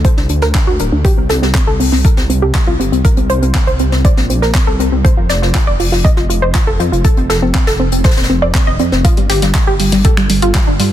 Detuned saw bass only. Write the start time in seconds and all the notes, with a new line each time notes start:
0.17 C2
0.30 D2
0.42 D2
0.67 D2
0.80 D1
0.92 D2
1.17 C2
1.30 C2
1.42 C2
1.67 C2
1.80 C2
1.92 C2
2.17 C2
2.30 C2
2.42 C2
2.67 C2
2.80 G1
2.92 C2
3.17 C2
3.30 C2
3.42 C2
3.67 C2
3.80 C2
3.92 C2
4.17 A#1
4.30 A#1
4.42 A#1
4.67 C2
4.80 C2
4.92 C2
5.17 F1
5.30 F1
5.42 F1
5.67 F1
5.80 F1
5.92 F1
6.17 F1
6.30 F1
6.42 F1
6.67 F1
6.80 F2
6.92 F1
7.17 F1
7.30 F1
7.42 F1
7.67 F1
7.80 F1
7.92 F1
8.17 D#1
8.30 F1
8.42 F1
8.67 F1
8.80 F2
8.92 F1
9.17 G1
9.30 G1
9.42 G1
9.67 G1
9.80 G1
9.92 G1
10.17 G1
10.30 G1
10.42 G1
10.67 G1
10.80 G2